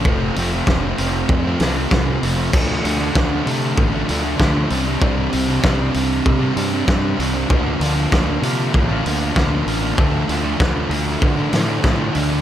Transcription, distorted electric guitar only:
\new Staff \with { instrumentName = "Distorted electric guitar" } { \time 4/4 \key d \minor \tempo 4 = 97 <f, c f a c'>8 <c f a c'>16 <f a c'>16 <f, c f a c'>8 <c f a c'>8. <f a c'>16 <c f a c'>16 <f a c'>16 <f, c f a c'>8 <c f a c'>16 <f a c'>16 | <d f a d'>8 <d f a d'>16 <f a d'>16 <d f a d'>8 <d f a d'>8. <f a d'>16 <d f a d'>16 <f a d'>16 <d f a d'>8 <c g c' d'>16 <g c' d'>16 | <c g c' d'>8 <c g c' d'>16 <g c' d'>16 <c g c' d'>8 <c g c' d'>8. <g c' d'>16 <c g c' d'>16 <g c' d'>16 <c g c' d'>8 <c g c' d'>16 <g c' d'>16 | <d f bes d'>8 <d f bes d'>16 <f bes d'>16 <d f bes d'>8 <d f bes d'>8. <f bes d'>16 <d f bes d'>16 <f bes d'>16 <d f bes d'>8 <d f bes d'>16 <f bes d'>16 |
<d f a d'>8 <d f a d'>16 <f a d'>16 <d f a d'>8 <d f a d'>8. <f a d'>16 <d f a d'>16 <f a d'>16 <d f a d'>8 <d f a d'>16 <f a d'>16 | }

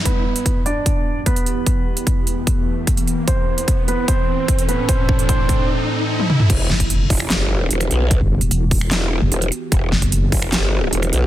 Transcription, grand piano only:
\new Staff \with { instrumentName = "Grand piano" } { \time 4/4 \key e \minor \tempo 4 = 149 <b b'>4. <d' d''>4. <b b'>4~ | <b b'>1 | <c' c''>4. <b b'>8 <c' c''>4. <b b'>8 | <c' c''>4 <c' c''>4 r2 |
r1 | r1 | r1 | }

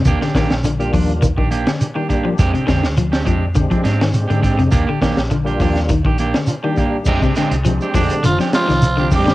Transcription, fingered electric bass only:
\new Staff \with { instrumentName = "Fingered electric bass" } { \clef bass \time 4/4 \key f \dorian \tempo 4 = 103 ees,16 r16 bes,,16 bes,,8. ees,8. bes,,8 r4 r16 | f,16 r16 f,16 d,8. f,8. f16 aes,8. aes,8 f,16 | ees,16 r16 bes,,16 bes,,8. ees,8. bes,,8 r4 r16 | f,,16 r8 c,8 r16 f,,16 r16 f,,16 r8 c,8. f,,8 | }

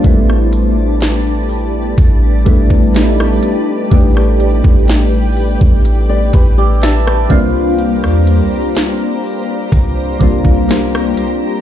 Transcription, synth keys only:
\new Staff \with { instrumentName = "Synth keys" } { \time 4/4 \key a \minor \tempo 4 = 62 << { r1 | r2 r8 b'16 d''16 <e'' a''>16 b'16 f''8 | r1 | } \\ { <g a b d' e'>4. r4 <g a b d' e'>8 <g a b d' dis' e'>8 r8 | <g a b d' g'>4. r2 <g bes c' d' f'>8~ | <g bes c' d' f'>4 r4. <g bes c' d' f'>8 <g bes c' d' f'>8 r8 | } >> }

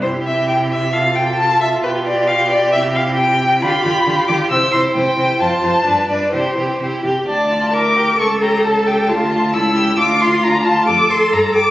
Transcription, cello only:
\new Staff \with { instrumentName = "Cello" } { \clef bass \time 2/4 \key c \major \tempo 4 = 134 c2~ | c2 | b,2 | c2 |
d8 d8 d8 d8 | c8 c8 c8 c8 | f,8 f,8 g,8 g,8 | c8 c8 c8 c8 |
\key d \minor d,2 | cis,2 | d,4 cis,4 | d,2 |
f,4 g,4 | }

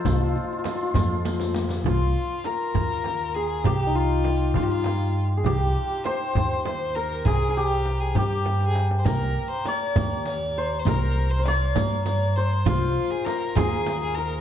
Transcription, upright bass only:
\new Staff \with { instrumentName = "Upright bass" } { \clef bass \time 6/8 \tempo 4. = 67 c,8 r4 f,4. | c,8 r4 ees,4. | c,4. g,4. | c,8 r4 ees,4. |
c,4. g,4. | c,8 r4 ees,4. | c,4. g,4. | c,8 r4 ees,4. | }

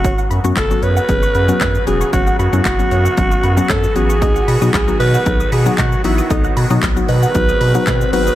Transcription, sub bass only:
\new Staff \with { instrumentName = "Sub bass" } { \clef bass \time 4/4 \key b \mixolydian \tempo 4 = 115 fis,,8 fis,16 fis,16 fis,,8 fis,8 fis,,8 fis,8 fis,8 e,,8 | fis,,8 fis,16 fis,16 fis,,8 fis,8 fis,,8 fis,8 fis,8 a,,8 | b,,8 b,16 b,16 b,,8 b,8 b,,8 b,8 b,8 a,,8 | b,,8 b,16 b,16 b,,8 b,8 b,,8 b,8 b,8 gis,,8 | }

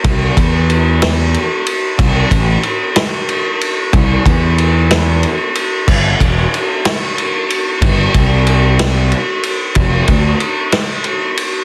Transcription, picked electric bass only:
\new Staff \with { instrumentName = "Picked electric bass" } { \clef bass \time 6/8 \key c \major \tempo 4. = 62 c,8 e,2 r8 | c,8 a,,8 r2 | c,8 e,2 r8 | g,,8 e,,8 r2 |
g,,8 c,2 r8 | f,,8 d,8 r2 | }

